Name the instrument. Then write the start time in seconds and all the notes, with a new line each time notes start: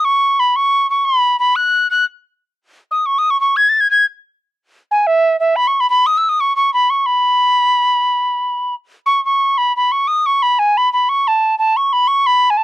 tin whistle
0.05 C#6
0.40 B5
0.56 C#6
0.90 C#6
1.05 B5
1.40 B5
1.56 F#6
1.91 F#6
2.91 D#6
3.06 C#6
3.18 D#6
3.30 C#6
3.41 C#6
3.57 G#6
3.69 A6
3.81 G#6
3.91 G#6
4.91 G#5
5.07 E5
5.40 E5
5.56 B5
5.67 C#6
5.80 B5
5.90 B5
6.06 D#6
6.17 E6
6.29 D#6
6.40 C#6
6.56 C#6
6.74 B5
6.90 C#6
7.06 B5
9.06 C#6
9.25 C#6
9.58 B5
9.77 B5
9.92 C#6
10.08 D#6
10.26 C#6
10.42 B5
10.59 G#5
10.77 B5
10.93 B5
11.09 C#6
11.28 A5
11.59 A5
11.77 C#6
11.93 B5
12.08 C#6
12.27 B5
12.50 G#5
12.57 A5